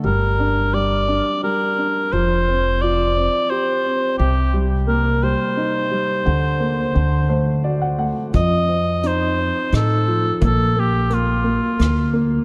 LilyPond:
<<
  \new Staff \with { instrumentName = "Cor anglais" } { \time 3/4 \key f \mixolydian \tempo 4 = 87 bes'4 d''4 bes'4 | c''4 d''4 c''4 | g'8 r8 bes'8 c''4.~ | c''2 r4 |
ees''4 c''4 a'4 | a'8 g'8 f'4. r8 | }
  \new Staff \with { instrumentName = "Grand piano" } { \time 3/4 \key f \mixolydian r2. | r2. | r2. | r4. c''8 d''16 fis''16 fis''8 |
r2. | r2. | }
  \new Staff \with { instrumentName = "Grand piano" } { \time 3/4 \key f \mixolydian g8 d'8 g8 d'8 g8 d'8 | f8 c'8 f'8 c'8 g'8 c'8 | c8 g8 bes8 g8 ees'8 g8 | d8 bes8 d8 a8 fis'8 a8 |
f8 c'8 ees'8 c'8 ees'8 f8 | bes8 bes8 bes8 bes8 bes8 bes8 | }
  \new Staff \with { instrumentName = "Upright bass" } { \clef bass \time 3/4 \key f \mixolydian g,,2 r4 | f,,2 r4 | c,2 r4 | d,4 d,2 |
f,2 a,4 | bes,,2 d,4 | }
  \new DrumStaff \with { instrumentName = "Drums" } \drummode { \time 3/4 r4 r4 r4 | r4 r4 r4 | r4 r4 r4 | r4 r4 r4 |
<hh bd>4 hh4 <hh ss>4 | <hh bd>4 hh4 <hh ss>4 | }
>>